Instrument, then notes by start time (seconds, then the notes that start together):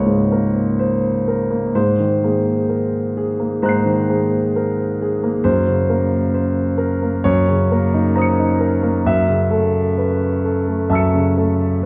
grand piano
Already playing: C#2 G#2 A#3 A#4 C5 C#5
0.06 G#2
0.32 A#3 A#4
0.79 C5
1.28 A#4
1.51 A#3
1.75 G#2 C5
2.00 D#3
2.24 A#3 G#4
2.69 A#4
3.17 G#4
3.40 A#3
3.62 G#2 C5 A#5 F#6
3.69 C7
3.86 D#3
4.09 A#3 G#4
4.56 A#4
5.02 G#4
5.23 A#3
5.44 F#2 C5
5.68 C#3
5.89 A#3 A#4
6.34 C5
6.78 A#4
7.03 A#3
7.24 F#2 C#5
7.48 C#3
7.71 A#3 A#4
7.94 D#4
8.16 C5 A#5 D#6
8.22 C#7
8.40 D#4
8.60 A#4
8.83 A#3
9.06 F#2 E5
9.27 C#3
9.50 A3 A4
9.98 B4
10.44 A4
10.68 A3
10.90 F#2 E5 A5 E6
10.95 C#7
11.14 C#3
11.38 A3 A4